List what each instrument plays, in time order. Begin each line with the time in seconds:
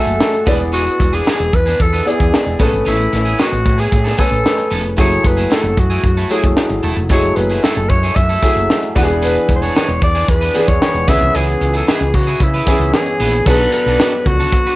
Already playing: grand piano A3 F#4 G#4 E5 G#5, alto saxophone A4
0.06 fretless electric bass F#1, muted clean electric guitar stroke, closed hi-hat
0.21 snare
0.33 muted clean electric guitar stroke, closed hi-hat
0.46 fretless electric bass E1, clean electric guitar B3 D4 B4, grand piano B3 E4 G#4 D5, kick, closed hi-hat
0.59 muted clean electric guitar stroke, closed hi-hat
0.72 clean electric guitar B3 D4 G#4, alto saxophone F#4, closed hi-hat
0.86 muted clean electric guitar stroke, closed hi-hat
1.00 fretless electric bass E1, muted clean electric guitar stroke, kick, closed hi-hat
1.13 clean electric guitar B3 D4 G#4, alto saxophone G#4, closed hi-hat
1.26 clean electric guitar B3 D4 G#4, snare
1.40 fretless electric bass E1, muted clean electric guitar stroke, closed hi-hat
1.53 fretless electric bass E2, alto saxophone B4, muted clean electric guitar stroke, kick, closed hi-hat
1.66 clean electric guitar B3 D4 G#4, closed hi-hat
1.80 fretless electric bass E2, alto saxophone A4, muted clean electric guitar stroke, kick, closed hi-hat
1.93 clean electric guitar B3 D4 B4, closed hi-hat
2.05 grand piano B3 E4 G#4 D5, alto saxophone G#4, muted clean electric guitar stroke, closed hi-hat
2.20 fretless electric bass E2, muted clean electric guitar stroke, kick, closed hi-hat
2.34 snare
2.46 fretless electric bass E1, muted clean electric guitar stroke, closed hi-hat
2.59 fretless electric bass A1, grand piano A3 C#4 G#4 B4, clean electric guitar B3 C#4 A4, kick, closed hi-hat
2.73 fretless electric bass G#1, muted clean electric guitar stroke, closed hi-hat
2.85 fretless electric bass A1, clean electric guitar B3 C#4 G#4, alto saxophone E4, closed hi-hat
2.99 muted clean electric guitar stroke, closed hi-hat
3.12 fretless electric bass A1, muted clean electric guitar stroke, snare, closed hi-hat
3.25 clean electric guitar B3 C#4 G#4, closed hi-hat
3.38 clean electric guitar B3 C#4 G#4, alto saxophone F#4, snare
3.52 fretless electric bass A1, muted clean electric guitar stroke, closed hi-hat
3.65 fretless electric bass A2, muted clean electric guitar stroke, kick, closed hi-hat
3.78 clean electric guitar B3 C#4 G#4, alto saxophone G#4, closed hi-hat
3.91 fretless electric bass A2, muted clean electric guitar stroke, kick, closed hi-hat
4.04 clean electric guitar B3 C#4 A4, snare, closed hi-hat
4.17 grand piano A3 C#4 B4 G#5, clean electric guitar B3 C#4 G#4, alto saxophone A4, kick, closed hi-hat
4.30 fretless electric bass A1, muted clean electric guitar stroke, closed hi-hat
4.44 muted clean electric guitar stroke, snare
4.58 muted clean electric guitar stroke, closed hi-hat
4.71 fretless electric bass F1, clean electric guitar B3 C#4 A4, closed hi-hat
4.84 muted clean electric guitar stroke, closed hi-hat
4.97 fretless electric bass F#1, grand piano F#3 A3 E4 G#4, clean electric guitar A3 E4 G#4, alto saxophone C#5, kick, closed hi-hat
5.11 muted clean electric guitar stroke, closed hi-hat
5.23 fretless electric bass F#1, alto saxophone B4, muted clean electric guitar stroke, kick, closed hi-hat
5.37 clean electric guitar A3 E4 G#4, closed hi-hat
5.49 clean electric guitar A3 E4 G#4, alto saxophone A4, snare
5.63 fretless electric bass F#1, muted clean electric guitar stroke, closed hi-hat
5.77 fretless electric bass F#2, alto saxophone F#4, muted clean electric guitar stroke, kick, closed hi-hat
5.90 clean electric guitar A3 E4 G#4, closed hi-hat
6.03 fretless electric bass F#2, muted clean electric guitar stroke, kick, closed hi-hat
6.17 clean electric guitar A3 E4 A4, closed hi-hat
6.30 grand piano F#3 A3 E4 G#4, clean electric guitar A3 E4 G#4, closed hi-hat
6.43 fretless electric bass F#1, muted clean electric guitar stroke, kick, closed hi-hat
6.57 snare
6.70 fretless electric bass G#1, muted clean electric guitar stroke, closed hi-hat
6.83 fretless electric bass E1, clean electric guitar A3 E4 A4, closed hi-hat
6.97 fretless electric bass F1, muted clean electric guitar stroke, closed hi-hat
7.09 fretless electric bass F#1, grand piano F#3 G#3 E4 G#4, clean electric guitar A3 E4 G#4, alto saxophone C#5, kick, closed hi-hat
7.16 grand piano A3
7.23 muted clean electric guitar stroke, closed hi-hat
7.36 fretless electric bass F#1, alto saxophone B4, muted clean electric guitar stroke, closed hi-hat
7.50 clean electric guitar A3 E4 G#4, closed hi-hat
7.63 clean electric guitar A3 E4 G#4, alto saxophone A4, snare
7.77 fretless electric bass F#1, muted clean electric guitar stroke, closed hi-hat
7.89 fretless electric bass F#2, alto saxophone C#5, muted clean electric guitar stroke, kick, closed hi-hat
8.03 clean electric guitar A3 E4 G#4, closed hi-hat
8.15 fretless electric bass F#2, alto saxophone E5, muted clean electric guitar stroke, kick, closed hi-hat
8.29 clean electric guitar A3 E4 A4, closed hi-hat
8.42 grand piano F#3 A3 E4 G#4, clean electric guitar A3 E4 G#4, kick, closed hi-hat
8.56 fretless electric bass F#1, muted clean electric guitar stroke, closed hi-hat
8.70 snare
8.83 muted clean electric guitar stroke, closed hi-hat
8.95 fretless electric bass E1, grand piano E3 B3 D4 F#4, clean electric guitar B3 D4 B4, kick, closed hi-hat
9.03 grand piano G#4
9.09 muted clean electric guitar stroke, closed hi-hat
9.22 clean electric guitar B3 D4 G#4, alto saxophone B4, closed hi-hat
9.36 muted clean electric guitar stroke, closed hi-hat
9.49 fretless electric bass E1, muted clean electric guitar stroke, kick, closed hi-hat
9.56 alto saxophone C5
9.62 clean electric guitar B3 D4 G#4, alto saxophone C#5, closed hi-hat
9.75 clean electric guitar B3 D4 G#4, snare
9.88 fretless electric bass E1, muted clean electric guitar stroke, closed hi-hat
10.02 fretless electric bass E2, alto saxophone D5, muted clean electric guitar stroke, kick, closed hi-hat
10.15 clean electric guitar B3 D4 G#4, closed hi-hat
10.28 fretless electric bass E2, alto saxophone B4, muted clean electric guitar stroke, kick, closed hi-hat
10.41 clean electric guitar B3 D4 B4, closed hi-hat
10.54 grand piano E3 B3 D4 G#4, clean electric guitar B3 D4 G#4, closed hi-hat
10.68 fretless electric bass E2, alto saxophone C#5, muted clean electric guitar stroke, kick, closed hi-hat
10.82 snare
10.94 fretless electric bass E1, muted clean electric guitar stroke, closed hi-hat
11.07 fretless electric bass C#2, grand piano E3 B3 C#4 G#4, clean electric guitar B3 E4 B4, alto saxophone E5, kick, closed hi-hat
11.21 fretless electric bass C2, muted clean electric guitar stroke, closed hi-hat
11.34 fretless electric bass C#2, clean electric guitar B3 E4 G#4, alto saxophone G#4, closed hi-hat
11.48 muted clean electric guitar stroke, closed hi-hat
11.61 fretless electric bass C#2, muted clean electric guitar stroke, closed hi-hat
11.73 clean electric guitar B3 E4 G#4, alto saxophone A4, closed hi-hat
11.87 clean electric guitar B3 E4 G#4, alto saxophone G#4, snare
12.01 fretless electric bass C#2, muted clean electric guitar stroke, closed hi-hat
12.14 fretless electric bass C#3, alto saxophone F#4, muted clean electric guitar stroke, kick, open hi-hat
12.27 clean electric guitar B3 E4 G#4, closed hi-hat
12.40 fretless electric bass C#3, alto saxophone E4, muted clean electric guitar stroke, kick, closed hi-hat
12.54 clean electric guitar B3 E4 B4, closed hi-hat
12.66 grand piano E3 B3 C#4 G#4, clean electric guitar B3 E4 G#4, kick, closed hi-hat
12.80 fretless electric bass C#2, muted clean electric guitar stroke, closed hi-hat
12.94 alto saxophone G#4, snare
13.06 muted clean electric guitar stroke, closed hi-hat
13.20 fretless electric bass A#1, clean electric guitar B3 E4 B4, open hi-hat
13.33 muted clean electric guitar stroke, closed hi-hat
13.46 fretless electric bass B1, grand piano F#3 B3 D4 G#4, clean electric guitar D4 F#4 A4, alto saxophone B4, kick, crash, muted conga, low conga
13.54 grand piano A4
13.60 muted clean electric guitar stroke, muted conga
13.72 alto saxophone B4, muted clean electric guitar stroke, closed hi-hat, high conga
13.86 fretless electric bass B1, clean electric guitar D4 F#4 A4
13.99 clean electric guitar D4 F#4 A4, snare, closed hi-hat, muted conga
14.13 muted clean electric guitar stroke
14.25 fretless electric bass C#2, alto saxophone F#4, muted clean electric guitar stroke, kick, closed hi-hat, high conga
14.40 clean electric guitar D4 F#4 A4, low conga
14.52 muted clean electric guitar stroke, kick, closed hi-hat
14.67 clean electric guitar D4 F#4 B4